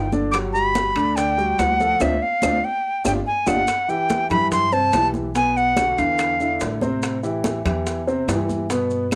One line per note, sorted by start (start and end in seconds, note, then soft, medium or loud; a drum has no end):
0.00 0.90 G1 medium
0.00 0.12 G5 medium
0.12 0.30 D3 medium
0.12 0.30 D4 medium
0.12 0.30 D5 medium
0.12 high bongo soft
0.12 high conga medium
0.12 maracas soft
0.31 0.50 F#3 medium
0.31 0.51 F#4 medium
0.31 0.51 G4 medium
0.31 0.37 D6 loud
0.31 high bongo medium
0.31 high conga soft
0.31 high timbale medium
0.31 claves medium
0.31 maracas medium
0.53 0.89 G3 medium
0.53 0.89 F#4 medium
0.53 0.89 G4 medium
0.53 1.17 B5 medium
0.53 high conga soft
0.53 maracas soft
0.75 high bongo medium
0.75 high conga medium
0.75 high timbale medium
0.75 low timbale medium
0.75 maracas medium
0.95 1.55 D2 medium
0.95 1.13 D3 medium
0.95 1.13 D4 medium
0.95 1.14 D5 medium
0.95 high bongo soft
0.95 high conga soft
0.95 high timbale medium
0.95 claves medium
0.95 maracas soft
1.16 1.34 D3 medium
1.16 1.34 D4 medium
1.16 1.34 D5 medium
1.16 1.60 G5 medium
1.16 high bongo medium
1.16 high conga soft
1.16 high timbale medium
1.16 maracas medium
1.37 1.72 G3 medium
1.37 1.72 F#4 medium
1.37 1.72 G4 medium
1.37 high bongo soft
1.37 high conga soft
1.37 maracas soft
1.58 1.98 D2 medium
1.58 2.03 F#5 medium
1.58 high bongo soft
1.58 low bongo medium
1.58 high conga medium
1.58 high timbale medium
1.58 low timbale medium
1.58 claves medium
1.58 maracas medium
1.80 1.97 F3 medium
1.80 1.98 F4 medium
1.80 1.98 A4 medium
1.80 high bongo soft
1.80 high conga medium
1.80 maracas soft
2.00 2.16 D2 medium
2.00 2.14 C4 medium
2.00 2.14 D4 medium
2.00 2.15 F4 medium
2.00 2.24 E5 medium
2.00 low bongo medium
2.00 high conga medium
2.00 high timbale medium
2.00 claves loud
2.00 maracas loud
2.22 2.66 F5 medium
2.42 2.58 D2 medium
2.42 2.56 C4 medium
2.42 2.56 D4 medium
2.42 2.56 F4 medium
2.42 low bongo loud
2.42 high conga loud
2.42 high timbale medium
2.42 claves loud
2.42 maracas loud
2.64 3.06 G5 medium
3.04 3.21 G1 medium
3.04 3.18 D4 medium
3.04 3.18 F4 medium
3.04 3.18 G4 medium
3.04 3.12 G5 medium
3.04 low bongo medium
3.04 high conga medium
3.04 high timbale loud
3.04 claves medium
3.04 maracas loud
3.27 3.49 G#5 medium
3.46 3.63 G1 medium
3.46 3.60 D4 medium
3.46 3.60 F4 medium
3.46 3.60 G4 medium
3.46 3.91 F#5 medium
3.46 low bongo medium
3.46 high conga loud
3.46 high timbale loud
3.46 claves medium
3.46 maracas medium
3.67 high bongo medium
3.67 high conga soft
3.67 high timbale medium
3.67 claves medium
3.67 maracas medium
3.88 4.23 E3 medium
3.88 4.23 E4 medium
3.88 4.24 G4 medium
3.88 4.30 G5 medium
3.88 high conga soft
3.88 maracas soft
4.10 high bongo medium
4.10 high conga medium
4.10 high timbale medium
4.10 low timbale medium
4.10 maracas medium
4.30 4.89 G2 medium
4.30 4.65 E3 medium
4.30 4.65 E4 medium
4.30 4.65 G4 medium
4.30 4.50 B5 loud
4.30 high bongo soft
4.30 high conga soft
4.30 low conga medium
4.30 high timbale medium
4.30 claves medium
4.30 maracas soft
4.52 4.74 C6 loud
4.52 high bongo medium
4.52 high conga soft
4.52 low conga medium
4.52 high timbale medium
4.52 maracas medium
4.72 4.90 C3 medium
4.72 4.90 C4 medium
4.72 4.90 C5 medium
4.72 5.08 A5 loud
4.72 high bongo soft
4.72 high conga soft
4.72 maracas soft
4.93 5.92 B1 medium
4.93 5.28 E3 medium
4.93 5.28 E4 medium
4.93 5.28 G4 medium
4.93 high bongo soft
4.93 low bongo medium
4.93 high conga medium
4.93 high timbale medium
4.93 low timbale medium
4.93 claves medium
4.93 maracas medium
5.14 high bongo soft
5.14 high conga medium
5.14 maracas soft
5.35 5.70 B2 medium
5.35 5.70 B3 medium
5.35 5.70 B4 medium
5.35 5.58 G#5 medium
5.35 high bongo medium
5.35 high conga soft
5.35 high timbale medium
5.35 maracas medium
5.56 6.00 F#5 medium
5.56 high conga soft
5.56 maracas soft
5.77 5.95 D3 medium
5.77 5.95 D4 medium
5.77 5.95 F#4 medium
5.77 high bongo medium
5.77 high conga loud
5.77 high timbale medium
5.77 low timbale medium
5.77 claves medium
5.77 maracas medium
5.97 6.57 E2 medium
5.97 6.33 D3 medium
5.97 6.33 E3 medium
5.97 6.33 D4 medium
5.97 6.61 F5 medium
5.97 high bongo soft
5.97 high conga soft
5.97 high timbale medium
5.97 maracas soft
6.19 high bongo medium
6.19 high conga soft
6.19 high timbale medium
6.19 claves medium
6.19 maracas medium
6.40 6.75 D3 medium
6.40 6.75 D4 medium
6.40 6.75 E4 medium
6.40 high bongo soft
6.40 high conga soft
6.40 maracas soft
6.60 7.60 A1 medium
6.60 high bongo soft
6.60 low bongo medium
6.60 high conga soft
6.60 high timbale medium
6.60 low timbale medium
6.60 maracas medium
6.81 7.16 C3 medium
6.81 7.16 C4 medium
6.81 7.16 C5 medium
6.81 high bongo soft
6.81 high conga medium
6.81 maracas soft
7.03 high bongo medium
7.03 high conga soft
7.03 high timbale medium
7.03 claves medium
7.03 maracas medium
7.23 7.58 E3 medium
7.23 7.58 E4 medium
7.23 7.58 G4 medium
7.23 high conga soft
7.23 maracas soft
7.44 high bongo medium
7.44 high conga loud
7.44 high timbale medium
7.44 low timbale medium
7.44 maracas medium
7.65 8.24 E2 medium
7.65 8.00 E3 medium
7.65 8.00 E4 medium
7.65 8.00 G4 medium
7.65 high bongo soft
7.65 high conga soft
7.65 low conga medium
7.65 high timbale medium
7.65 claves medium
7.65 maracas soft
7.87 high bongo medium
7.87 high conga soft
7.87 high timbale medium
7.87 maracas medium
8.07 8.25 C3 medium
8.07 8.25 C4 medium
8.07 8.25 C5 medium
8.07 high bongo soft
8.07 high conga soft
8.07 maracas soft
8.28 9.15 G2 medium
8.28 8.63 E3 medium
8.28 8.63 E4 medium
8.28 8.63 G4 medium
8.28 high bongo soft
8.28 low bongo medium
8.28 high conga medium
8.28 high timbale medium
8.28 low timbale medium
8.28 claves medium
8.28 maracas medium
8.48 high bongo soft
8.48 high conga medium
8.48 maracas soft
8.70 9.05 B2 medium
8.70 9.05 B3 medium
8.70 9.05 B4 medium
8.70 high bongo medium
8.70 high conga soft
8.70 high timbale medium
8.70 maracas medium
8.90 high conga soft
8.90 maracas soft
9.11 claves medium